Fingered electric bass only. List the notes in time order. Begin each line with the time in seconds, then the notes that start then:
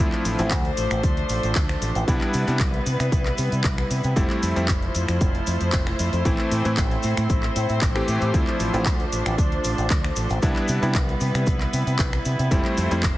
0.25 A1
0.39 A1
0.51 D2
0.78 A1
0.91 A1
1.03 D2
1.30 A1
1.43 A1
1.56 D2
1.82 A1
1.95 A1
2.08 C2
2.34 C3
2.48 C3
2.60 C2
2.86 C3
3.00 C3
3.12 C2
3.38 C3
3.52 C3
3.64 C2
3.90 C3
4.04 C3
4.17 F1
4.43 F2
4.57 F2
4.69 F1
4.95 F2
5.09 F2
5.21 F1
5.47 F2
5.61 F2
5.73 F1
6.00 F2
6.13 F2
6.25 A1
6.51 A2
6.65 A2
6.78 A1
7.04 A2
7.18 A2
7.30 A1
7.56 A2
7.70 A2
7.82 A1
8.08 A2
8.22 A2
8.34 D2
8.60 A1
8.74 A1
8.86 D2
9.12 A1
9.26 A1
9.38 D2
9.64 A1
9.78 A1
9.90 D2
10.17 A1
10.30 A1
10.43 C2
10.69 C3
10.82 C3
10.95 C2
11.21 C3
11.35 C3
11.47 C2
11.73 C3
11.87 C3
11.99 C2
12.25 C3
12.39 C3
12.51 F1
12.78 F2
12.91 F2
13.03 F1